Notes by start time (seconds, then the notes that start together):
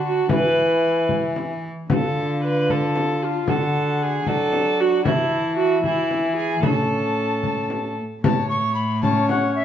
Already playing: D3 F#4 A5
0.06 F#4
0.29 E3 E4 B4 G#5, frame drum
1.09 frame drum
1.36 frame drum
1.90 D3 F4 A4 F5 F#5, frame drum
2.44 B4
2.69 A4 A5 B5, frame drum
2.96 frame drum
3.24 F4
3.48 D3 F#4 A4 F#5, frame drum
4.02 G#4
4.26 F#3 D4 A4 F#5, frame drum
4.53 frame drum
4.80 F#4
5.05 E3 E4 A5, frame drum
5.57 F#4
5.84 E3 E4 G#5, frame drum
6.11 frame drum
6.36 G#4
6.63 A2 C#4 A4 B5, frame drum
6.67 A5
7.43 frame drum
7.70 frame drum
8.23 A2 C#5 A5, frame drum
8.49 C#6
8.75 B5
9.03 C#4 C#5 A5, frame drum
9.29 F#5, frame drum
9.55 E5